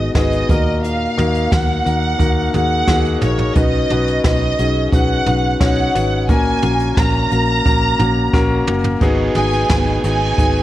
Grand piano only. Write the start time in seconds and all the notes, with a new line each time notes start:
Already playing: G#2 D#3 B3 D#4 F#4 G#4 B4
0.15 B3 D#4 F#4 G#4
0.50 A#2 A#3 D#4 F#4 A#4
1.17 A#3 D#4 F#4 A#4
1.51 A#3 D#4 F#4 A#4
1.85 A#3 D#4 F#4 A#4
2.19 A#3 D#4 F#4 A#4
2.54 A#3 D#4 F#4 G#4
2.87 A#3 D#4 F#4 G#4
3.21 A#3 D#4 F#4 A#4
3.56 C#4 D#4 F#4 B4
3.91 C#4 D#4 F#4 B4
4.25 C#4 D#4 F#4 B4
4.59 C#4 D#4 F#4 G#4
4.93 C#4 D#4 F#4 B4
5.27 C#4 D#4 F#4 B4
5.60 C#4 D#4 F#4 C#5
5.94 C#4 D#4 F#4 B4
6.29 A#2 A#3 C#4 F#4 A#4
6.63 A#3 C#4 F#4 A#4
6.97 A#3 C#4 F#4 A#4
7.31 A#3 C#4 F#4 A#4
7.65 A#3 C#4 F#4 A#4
7.99 A#3 C#4 F#4 A#4
8.33 A#3 C#4 F#4 A#4
8.67 A#3 C#4 F#4 A#4
9.02 B3 D#4 F#4 G#4
9.36 B3 D#4 F#4 G#4
9.70 B3 D#4 F#4 G#4
10.04 B3 D#4 F#4 G#4
10.38 B3 D#4 F#4 G#4